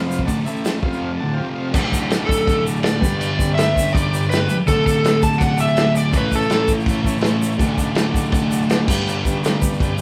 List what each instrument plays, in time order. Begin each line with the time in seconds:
Already playing: distorted electric guitar F2 C3 F3
0.06 transistor combo organ F4 C5 F5
0.11 shaker
0.19 kick
0.24 distorted electric guitar D2, transistor combo organ F#4 A4 D5, kick, open hi-hat
0.29 distorted electric guitar A2 D3, shaker
0.45 distorted electric guitar A2 E3 A3, transistor combo organ E4 A4 E5, shaker
0.56 shaker
0.65 snare, open hi-hat, shaker
0.81 distorted electric guitar F2 C3 F3, transistor combo organ F4 C5 F5, kick
0.93 shaker
1.17 distorted electric guitar D2, transistor combo organ A4 D5 F#5 A5
1.22 distorted electric guitar A2 D3
1.33 transistor combo organ F4 C5 F5 G5
1.39 distorted electric guitar F2 C3 F3
1.53 transistor combo organ F4 C5 F5
1.72 distorted electric guitar D2, transistor combo organ F#4 A4 D5, kick, crash, shaker
1.76 distorted electric guitar A2 D3
1.90 transistor combo organ F#4 A4 D5, kick
1.94 shaker
2.10 transistor combo organ F#4 A4 D5, snare, crash, shaker
2.26 transistor combo organ F#4 A4 D5, electric slide guitar A4, kick
2.32 shaker
2.47 transistor combo organ F#4 A4 D5, kick, crash, shaker
2.65 transistor combo organ F#4 A4 D5, shaker
2.83 transistor combo organ F#4 A4 D5, electric slide guitar D5, snare, crash, shaker
3.00 distorted electric guitar G2 D3, transistor combo organ G4 B4 D5, kick, shaker
3.06 distorted electric guitar G3
3.20 electric slide guitar D5, crash, shaker
3.39 transistor combo organ G4 B4 D5, kick, shaker
3.55 electric slide guitar E5, crash
3.59 transistor combo organ G4 B4, snare, shaker
3.63 transistor combo organ D5
3.75 transistor combo organ G4 B4 D5, kick, shaker
3.88 shaker
3.93 transistor combo organ G4 B4 D5, electric slide guitar D5, kick, crash
3.97 shaker
4.12 transistor combo organ G4 B4 D5, shaker
4.29 transistor combo organ G4 B4 D5, electric slide guitar B4, crash, shaker
4.34 snare
4.48 transistor combo organ G4 B4 D5, shaker
4.67 distorted electric guitar D2 A2, transistor combo organ F#4 A4, electric slide guitar A4, kick, crash, shaker
4.71 distorted electric guitar D3, transistor combo organ D5
4.86 transistor combo organ F#4 A4 D5, electric slide guitar A4, kick, shaker
5.03 transistor combo organ F#4 A4 D5, snare, crash, shaker
5.19 transistor combo organ F#4 A4 D5, kick, shaker
5.23 electric slide guitar A5
5.38 transistor combo organ F#4 A4 D5, electric slide guitar F#5, kick, crash, shaker
5.57 transistor combo organ F#4 A4 D5, electric slide guitar E5, shaker
5.77 transistor combo organ F#4 A4 D5, snare, crash, shaker
5.93 transistor combo organ F#4 A4 D5, electric slide guitar D5, shaker
6.12 distorted electric guitar A2 E3, transistor combo organ C#3 E4 A4 C#5, kick, crash, shaker
6.17 distorted electric guitar A3, electric slide guitar B4
6.32 transistor combo organ C#3 E4 A4 C#5, electric slide guitar A4, kick, shaker
6.50 transistor combo organ C#3 E4, snare, crash, shaker
6.54 transistor combo organ A4 C#5
6.68 transistor combo organ C#3 E4 A4 C#5, kick, shaker
6.80 shaker
6.86 transistor combo organ E4 C#5, kick, crash, shaker
6.90 transistor combo organ C#3 A4
7.04 transistor combo organ C#3 E4 A4 C#5, kick, shaker
7.21 transistor combo organ C#3 C#5, snare, crash
7.26 transistor combo organ E4 A4, shaker
7.38 transistor combo organ C#3 E4 A4 C#5
7.43 shaker
7.58 distorted electric guitar D2 A2, transistor combo organ F#4 A4 D5, kick, crash, shaker
7.64 distorted electric guitar D3
7.77 transistor combo organ F#4 A4 D5, kick, shaker
7.95 transistor combo organ F#4 A4 D5, snare, crash, shaker
8.11 transistor combo organ F#4 A4 D5, kick
8.16 shaker
8.29 transistor combo organ F#4 A4 D5, kick, crash
8.35 shaker
8.48 transistor combo organ F#4 A4 D5, shaker
8.68 transistor combo organ F#4 A4 D5, snare, crash, shaker
8.86 distorted electric guitar G2 D3, transistor combo organ G4 B4 D5, kick, crash
8.90 distorted electric guitar G3, shaker
9.07 crash, shaker
9.25 transistor combo organ G4 B4 D5, kick, shaker
9.42 transistor combo organ G4 B4 D5, snare, crash, shaker
9.60 transistor combo organ G4 B4 D5, kick, shaker
9.73 shaker
9.80 transistor combo organ G4 B4 D5, kick, crash, shaker
9.98 shaker